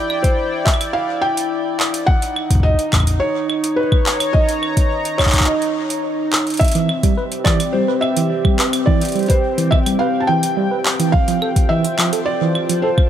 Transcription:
Already playing: analog synth pad E4 D5 G5, felt piano D5
0.10 claves
0.23 felt piano C5, kick, closed hi-hat
0.65 felt piano E5, kick, clap
0.74 claves
0.81 closed hi-hat, claves
0.93 felt piano F5
1.22 felt piano G5
1.37 closed hi-hat
1.80 clap
1.94 closed hi-hat
2.06 analog synth pad D#4, felt piano F#5, kick
2.22 closed hi-hat
2.36 claves
2.51 kick, closed hi-hat
2.55 kick
2.60 felt piano D#5, kick
2.65 kick
2.69 kick
2.74 kick
2.79 closed hi-hat
2.93 kick, clap, claves
2.96 kick
3.00 kick, claves
3.04 kick, closed hi-hat
3.07 kick
3.11 kick
3.14 kick
3.18 felt piano C#5, kick
3.44 analog synth pad C#5
3.50 claves
3.64 closed hi-hat
3.76 felt piano B4
3.92 analog synth pad A#5, kick, claves
4.06 clap
4.20 closed hi-hat, claves
4.33 felt piano D#5, kick
4.49 closed hi-hat
4.63 claves
4.77 kick, closed hi-hat
5.05 closed hi-hat
5.18 felt piano C#5, kick, clap, claves
5.23 kick, clap
5.26 clap
5.30 clap
5.34 kick, clap, closed hi-hat
5.37 kick, clap
5.41 clap
5.44 felt piano D#5, clap
5.62 closed hi-hat
5.90 closed hi-hat
6.33 clap
6.47 closed hi-hat
6.50 closed hi-hat
6.54 closed hi-hat
6.57 analog synth pad C4, felt piano E5, kick, closed hi-hat
6.61 closed hi-hat
6.64 closed hi-hat
6.68 closed hi-hat
6.72 tine electric piano E3, closed hi-hat
6.75 closed hi-hat
6.89 claves
6.94 analog synth pad G4
7.03 tine electric piano G3, kick, closed hi-hat
7.17 tine electric piano B4
7.32 analog synth pad G5, closed hi-hat
7.44 tine electric piano E3, felt piano D5, kick, clap, claves
7.60 closed hi-hat, claves
7.73 tine electric piano G3, felt piano C5
7.88 tine electric piano B4
8.01 felt piano E5, claves
8.17 tine electric piano E3, closed hi-hat
8.45 tine electric piano G3, kick, claves
8.59 tine electric piano B4, clap
8.73 closed hi-hat, claves
8.86 tine electric piano E3, felt piano D5, kick
9.01 closed hi-hat
9.05 closed hi-hat
9.09 closed hi-hat
9.12 closed hi-hat
9.16 tine electric piano G3, closed hi-hat
9.19 closed hi-hat
9.23 closed hi-hat
9.26 felt piano C5, closed hi-hat
9.30 tine electric piano B4, kick, closed hi-hat
9.58 tine electric piano E3, closed hi-hat
9.71 felt piano E5, kick, claves
9.86 tine electric piano G3, closed hi-hat, claves
9.99 tine electric piano B4, felt piano F5
10.20 felt piano A5
10.27 tine electric piano E3, felt piano G5
10.43 closed hi-hat
10.57 tine electric piano G3
10.71 tine electric piano B4
10.85 clap
11.00 tine electric piano E3, closed hi-hat
11.12 analog synth pad F4, felt piano F5, kick
11.28 tine electric piano F3, closed hi-hat
11.35 analog synth pad C5
11.42 tine electric piano A4, claves
11.56 kick, closed hi-hat
11.69 tine electric piano E3, felt piano E5
11.85 closed hi-hat
11.99 tine electric piano F3, clap, claves
12.13 tine electric piano A4, closed hi-hat
12.26 felt piano D5
12.33 analog synth pad A5
12.41 tine electric piano E3
12.55 claves
12.69 tine electric piano F3, closed hi-hat
12.82 tine electric piano A4, felt piano C5
12.98 kick, claves

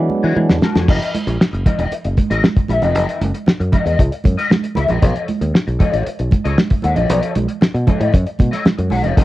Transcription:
Already playing: tonewheel organ F#3 G#3 B3 D4
0.10 muted conga, high conga
0.23 fingered electric bass E3, clean electric guitar D4 F#4 G#4
0.36 fingered electric bass E3, muted clean electric guitar stroke, muted conga, high conga
0.49 fingered electric bass E2, muted clean electric guitar stroke, snare
0.62 clean electric guitar D4 F#4 A#4, snare, high conga
0.75 fingered electric bass F2, clean electric guitar D4 F#4 G#4, snare, low conga
0.88 fingered electric bass F#1, clean electric guitar E4 A#4 D#5, kick, crash, muted conga, low conga
1.02 closed hi-hat
1.14 closed hi-hat, high conga
1.27 fingered electric bass A#1, muted clean electric guitar stroke, closed hi-hat
1.41 muted clean electric guitar stroke, snare
1.53 fingered electric bass F#1, muted clean electric guitar stroke, closed hi-hat
1.66 clean electric guitar E4 A#4 D#5, kick, closed hi-hat, high conga, low conga
1.79 fingered electric bass E1, clean electric guitar E4 A#4 D#5, closed hi-hat
1.91 muted fingered electric bass stroke, muted clean electric guitar stroke, closed hi-hat, muted conga
2.04 fingered electric bass F#1, muted clean electric guitar stroke, closed hi-hat
2.17 kick, closed hi-hat, muted conga, high conga
2.30 fingered electric bass A1, clean electric guitar E4 A#4 D#5, snare, closed hi-hat
2.44 muted clean electric guitar stroke, snare, muted conga, high conga
2.56 muted clean electric guitar stroke, kick, closed hi-hat
2.68 fingered electric bass A#1, clean electric guitar E4 A#4 E5, closed hi-hat, high conga
2.82 fingered electric bass F1, clean electric guitar E4 A#4 D#5, closed hi-hat, low conga
2.95 fingered electric bass F#1, clean electric guitar E4 A#4 D#5, closed hi-hat, low conga
3.09 closed hi-hat
3.21 fingered electric bass F#1, closed hi-hat, muted conga, high conga
3.34 muted clean electric guitar stroke, closed hi-hat
3.46 muted clean electric guitar stroke, muted fingered electric bass stroke, snare, muted conga
3.60 fingered electric bass F#2, muted clean electric guitar stroke, closed hi-hat
3.72 clean electric guitar E4 A#4 D#5, kick, closed hi-hat, high conga, low conga
3.85 fingered electric bass E2, clean electric guitar E4 A#4 D#5, closed hi-hat
3.98 fingered electric bass C#2, muted clean electric guitar stroke, kick, closed hi-hat, muted conga
4.12 muted clean electric guitar stroke, closed hi-hat
4.24 fingered electric bass F#2, kick, closed hi-hat, high conga
4.37 clean electric guitar E4 A#4 D#5, closed hi-hat
4.50 muted clean electric guitar stroke, snare, high conga
4.63 muted clean electric guitar stroke, closed hi-hat
4.75 fingered electric bass C#2, clean electric guitar E4 A#4 E5, closed hi-hat, muted conga, high conga
4.88 fingered electric bass A#1, clean electric guitar E4 A#4 D#5, closed hi-hat, low conga
5.02 fingered electric bass B1, clean electric guitar A4 C#5 D#5, kick, closed hi-hat, muted conga, low conga
5.16 closed hi-hat
5.28 closed hi-hat, muted conga, high conga
5.41 fingered electric bass D#2, muted clean electric guitar stroke, closed hi-hat
5.54 muted clean electric guitar stroke, snare
5.67 fingered electric bass B1, muted clean electric guitar stroke, closed hi-hat
5.79 clean electric guitar A4 C#5 D#5, kick, closed hi-hat, high conga, low conga
5.92 fingered electric bass A1, clean electric guitar A4 C#5 D#5, closed hi-hat
6.06 muted clean electric guitar stroke, muted fingered electric bass stroke, closed hi-hat
6.19 fingered electric bass B1, muted clean electric guitar stroke, closed hi-hat
6.31 kick, closed hi-hat, muted conga, high conga
6.44 fingered electric bass C#2, clean electric guitar A4 C#5 D#5, closed hi-hat
6.57 muted clean electric guitar stroke, snare, muted conga, high conga
6.70 muted clean electric guitar stroke, kick, closed hi-hat
6.82 fingered electric bass D#2, clean electric guitar A4 C#5 F#5, closed hi-hat, high conga
6.96 fingered electric bass A#1, clean electric guitar A4 C#5 D#5, closed hi-hat, low conga
7.09 fingered electric bass B1, clean electric guitar A4 C#5 D#5, closed hi-hat, muted conga, low conga
7.23 closed hi-hat
7.35 fingered electric bass B1, closed hi-hat, muted conga, high conga
7.48 muted clean electric guitar stroke, closed hi-hat
7.61 muted clean electric guitar stroke, muted fingered electric bass stroke, snare, muted conga
7.74 fingered electric bass B2, muted clean electric guitar stroke, closed hi-hat
7.87 clean electric guitar A4 C#5 D#5, kick, closed hi-hat, muted conga, high conga, low conga
8.00 fingered electric bass A2, clean electric guitar A4 C#5 D#5, closed hi-hat
8.13 fingered electric bass F#2, muted clean electric guitar stroke, kick, closed hi-hat, muted conga
8.26 muted clean electric guitar stroke, closed hi-hat
8.39 fingered electric bass B2, kick, closed hi-hat, muted conga, high conga
8.51 clean electric guitar A4 C#5 D#5, snare, closed hi-hat
8.64 muted clean electric guitar stroke, snare, muted conga, high conga
8.77 fingered electric bass F#2, muted clean electric guitar stroke, closed hi-hat
8.90 fingered electric bass B1, clean electric guitar A4 C#5 F#5, open hi-hat, high conga
9.03 fingered electric bass F1, clean electric guitar A4 C#5 D#5, closed hi-hat, low conga
9.16 fingered electric bass F#1, clean electric guitar E4 A#4 D#5, kick, closed hi-hat, muted conga, low conga

